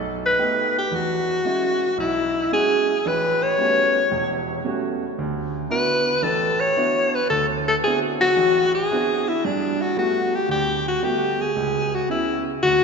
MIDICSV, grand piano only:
0, 0, Header, 1, 2, 480
1, 0, Start_track
1, 0, Tempo, 531915
1, 831, Time_signature, 4, 2, 24, 8
1, 11585, End_track
2, 0, Start_track
2, 0, Title_t, "Grand piano"
2, 0, Program_c, 0, 0
2, 0, Note_on_c, 0, 35, 72
2, 289, Note_off_c, 0, 35, 0
2, 350, Note_on_c, 0, 57, 51
2, 352, Note_on_c, 0, 59, 51
2, 353, Note_on_c, 0, 67, 60
2, 354, Note_on_c, 0, 63, 52
2, 697, Note_off_c, 0, 57, 0
2, 698, Note_off_c, 0, 59, 0
2, 698, Note_off_c, 0, 67, 0
2, 699, Note_off_c, 0, 63, 0
2, 826, Note_on_c, 0, 40, 67
2, 1248, Note_off_c, 0, 40, 0
2, 1307, Note_on_c, 0, 56, 55
2, 1309, Note_on_c, 0, 61, 50
2, 1310, Note_on_c, 0, 64, 51
2, 1314, Note_on_c, 0, 66, 57
2, 1656, Note_off_c, 0, 56, 0
2, 1657, Note_off_c, 0, 61, 0
2, 1658, Note_off_c, 0, 64, 0
2, 1660, Note_off_c, 0, 66, 0
2, 1786, Note_on_c, 0, 35, 64
2, 2208, Note_off_c, 0, 35, 0
2, 2274, Note_on_c, 0, 61, 51
2, 2276, Note_on_c, 0, 56, 52
2, 2276, Note_on_c, 0, 64, 50
2, 2278, Note_on_c, 0, 66, 63
2, 2620, Note_off_c, 0, 61, 0
2, 2621, Note_off_c, 0, 56, 0
2, 2621, Note_off_c, 0, 64, 0
2, 2622, Note_off_c, 0, 66, 0
2, 2760, Note_on_c, 0, 33, 67
2, 3176, Note_off_c, 0, 33, 0
2, 3231, Note_on_c, 0, 55, 51
2, 3233, Note_on_c, 0, 57, 45
2, 3237, Note_on_c, 0, 61, 46
2, 3238, Note_on_c, 0, 59, 44
2, 3241, Note_on_c, 0, 66, 60
2, 3579, Note_off_c, 0, 55, 0
2, 3580, Note_off_c, 0, 57, 0
2, 3582, Note_off_c, 0, 59, 0
2, 3582, Note_off_c, 0, 61, 0
2, 3584, Note_off_c, 0, 66, 0
2, 3709, Note_on_c, 0, 40, 65
2, 3712, Note_on_c, 0, 28, 63
2, 4130, Note_off_c, 0, 40, 0
2, 4132, Note_off_c, 0, 28, 0
2, 4190, Note_on_c, 0, 55, 53
2, 4191, Note_on_c, 0, 59, 46
2, 4193, Note_on_c, 0, 57, 48
2, 4194, Note_on_c, 0, 61, 48
2, 4198, Note_on_c, 0, 66, 62
2, 4538, Note_off_c, 0, 55, 0
2, 4539, Note_off_c, 0, 59, 0
2, 4540, Note_off_c, 0, 57, 0
2, 4541, Note_off_c, 0, 61, 0
2, 4542, Note_off_c, 0, 66, 0
2, 4680, Note_on_c, 0, 38, 72
2, 5096, Note_off_c, 0, 38, 0
2, 5141, Note_on_c, 0, 59, 51
2, 5143, Note_on_c, 0, 62, 47
2, 5147, Note_on_c, 0, 64, 47
2, 5148, Note_on_c, 0, 66, 59
2, 5494, Note_off_c, 0, 59, 0
2, 5495, Note_off_c, 0, 62, 0
2, 5497, Note_off_c, 0, 64, 0
2, 5497, Note_off_c, 0, 66, 0
2, 5619, Note_on_c, 0, 33, 69
2, 6045, Note_off_c, 0, 33, 0
2, 6106, Note_on_c, 0, 59, 55
2, 6107, Note_on_c, 0, 62, 51
2, 6112, Note_on_c, 0, 64, 50
2, 6112, Note_on_c, 0, 66, 62
2, 6456, Note_off_c, 0, 59, 0
2, 6457, Note_off_c, 0, 62, 0
2, 6459, Note_off_c, 0, 64, 0
2, 6459, Note_off_c, 0, 66, 0
2, 6589, Note_on_c, 0, 38, 74
2, 7010, Note_off_c, 0, 38, 0
2, 7078, Note_on_c, 0, 59, 54
2, 7080, Note_on_c, 0, 60, 47
2, 7081, Note_on_c, 0, 62, 49
2, 7081, Note_on_c, 0, 64, 49
2, 7085, Note_on_c, 0, 66, 59
2, 7422, Note_off_c, 0, 59, 0
2, 7423, Note_off_c, 0, 60, 0
2, 7423, Note_off_c, 0, 62, 0
2, 7423, Note_off_c, 0, 64, 0
2, 7425, Note_off_c, 0, 66, 0
2, 7552, Note_on_c, 0, 33, 65
2, 7971, Note_off_c, 0, 33, 0
2, 8039, Note_on_c, 0, 59, 53
2, 8045, Note_on_c, 0, 62, 53
2, 8046, Note_on_c, 0, 64, 50
2, 8046, Note_on_c, 0, 66, 66
2, 8047, Note_on_c, 0, 60, 48
2, 8382, Note_off_c, 0, 59, 0
2, 8385, Note_off_c, 0, 62, 0
2, 8385, Note_off_c, 0, 64, 0
2, 8385, Note_off_c, 0, 66, 0
2, 8386, Note_off_c, 0, 60, 0
2, 8525, Note_on_c, 0, 43, 74
2, 8938, Note_off_c, 0, 43, 0
2, 8990, Note_on_c, 0, 55, 57
2, 8995, Note_on_c, 0, 59, 48
2, 8996, Note_on_c, 0, 57, 55
2, 8997, Note_on_c, 0, 66, 64
2, 9337, Note_off_c, 0, 55, 0
2, 9339, Note_off_c, 0, 59, 0
2, 9340, Note_off_c, 0, 57, 0
2, 9340, Note_off_c, 0, 66, 0
2, 9465, Note_on_c, 0, 38, 68
2, 9887, Note_off_c, 0, 38, 0
2, 9949, Note_on_c, 0, 55, 58
2, 9952, Note_on_c, 0, 57, 51
2, 9952, Note_on_c, 0, 59, 51
2, 9953, Note_on_c, 0, 66, 61
2, 10296, Note_off_c, 0, 55, 0
2, 10298, Note_off_c, 0, 57, 0
2, 10298, Note_off_c, 0, 59, 0
2, 10298, Note_off_c, 0, 66, 0
2, 10434, Note_on_c, 0, 37, 70
2, 10851, Note_off_c, 0, 37, 0
2, 10910, Note_on_c, 0, 59, 52
2, 10913, Note_on_c, 0, 61, 48
2, 10921, Note_on_c, 0, 64, 55
2, 11257, Note_off_c, 0, 59, 0
2, 11258, Note_off_c, 0, 61, 0
2, 11262, Note_off_c, 0, 64, 0
2, 11398, Note_on_c, 0, 38, 65
2, 11585, Note_off_c, 0, 38, 0
2, 11585, End_track
0, 0, End_of_file